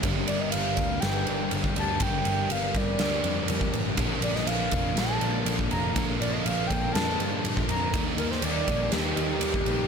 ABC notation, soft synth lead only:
X:1
M:4/4
L:1/16
Q:1/4=121
K:Gm
V:1 name="Soft synth lead"
z2 d e f4 g4 z2 a2 | g4 f2 d8 z2 | z2 d e f4 a4 z2 b2 | z2 d e f2 g2 a4 z2 b2 |
z2 B c d4 G8 |]